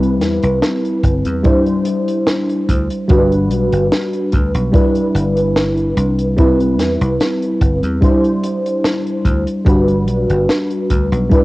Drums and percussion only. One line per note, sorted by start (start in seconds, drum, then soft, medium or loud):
0.03 closed hi-hat soft
0.21 snare medium
0.21 closed hi-hat loud
0.43 closed hi-hat medium
0.62 snare loud
0.62 closed hi-hat medium
0.85 closed hi-hat soft
1.03 kick medium
1.03 closed hi-hat medium
1.25 closed hi-hat medium
1.44 kick loud
1.44 closed hi-hat medium
1.66 closed hi-hat soft
1.85 closed hi-hat loud
2.08 closed hi-hat medium
2.27 snare loud
2.27 closed hi-hat medium
2.49 closed hi-hat soft
2.69 kick medium
2.69 closed hi-hat loud
2.90 closed hi-hat medium
3.09 kick loud
3.09 closed hi-hat medium
3.32 closed hi-hat soft
3.51 closed hi-hat medium
3.72 closed hi-hat medium
3.92 snare loud
3.92 closed hi-hat medium
4.13 closed hi-hat soft
4.32 kick medium
4.32 closed hi-hat medium
4.54 closed hi-hat medium
4.74 kick loud
4.74 closed hi-hat medium
4.95 closed hi-hat soft
5.16 closed hi-hat loud
5.37 closed hi-hat medium
5.56 snare loud
5.56 closed hi-hat medium
5.77 closed hi-hat soft
5.97 closed hi-hat loud
6.19 closed hi-hat medium
6.38 kick loud
6.38 closed hi-hat medium
6.60 closed hi-hat soft
6.79 snare medium
6.79 closed hi-hat loud
7.01 closed hi-hat medium
7.20 snare loud
7.20 closed hi-hat medium
7.42 closed hi-hat soft
7.61 kick medium
7.61 closed hi-hat loud
7.83 closed hi-hat medium
8.02 kick loud
8.02 closed hi-hat medium
8.24 closed hi-hat soft
8.44 closed hi-hat loud
8.66 closed hi-hat medium
8.84 snare loud
8.84 closed hi-hat medium
9.07 closed hi-hat soft
9.25 kick medium
9.25 closed hi-hat loud
9.47 closed hi-hat medium
9.67 kick loud
9.67 closed hi-hat medium
9.89 closed hi-hat soft
10.08 closed hi-hat medium
10.30 closed hi-hat medium
10.49 snare loud
10.49 closed hi-hat medium
10.71 closed hi-hat soft
10.90 kick medium
10.90 closed hi-hat loud
11.13 closed hi-hat medium
11.31 kick loud
11.31 closed hi-hat medium